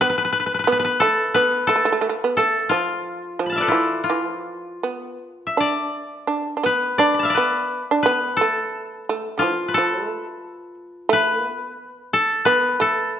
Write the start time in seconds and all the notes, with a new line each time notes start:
0.01 B3 B4
0.10 B4
0.18 B4
0.25 B4
0.33 B4
0.40 B4
0.46 B4
0.54 B4
0.59 B4
0.64 B3 B4
0.72 B4
0.79 B4
0.85 B4
1.00 A3 A4
1.34 B3 B4
1.67 A3 A4
1.76 A3
1.85 A3
1.92 A3
2.01 A3
2.09 A3 F4
2.24 B3
2.37 A3 A4
2.69 F3 F4
3.39 F3
3.46 A5 B5
3.52 E5 F5
3.58 B4 D5
3.62 A4
3.68 E4 F4
3.72 E3
4.04 F4
4.10 E3
4.27 F3
4.83 B3
5.47 E5
5.57 D4 D5
6.27 D4
6.57 D4
6.63 B3 B4
6.98 D4 D5
7.14 B5
7.19 F5 A5
7.25 E5
7.30 D5
7.35 B3 B4
7.91 D4
8.03 B3 B4
8.37 A4
8.41 A3
9.09 A3
9.38 D3 E3 F4
9.42 F3
9.68 B4
9.74 F3 A4
10.09 A3
11.09 A3 B4
11.33 A#3
11.48 B3
12.13 A4
12.45 B3 B4
12.80 A3 A4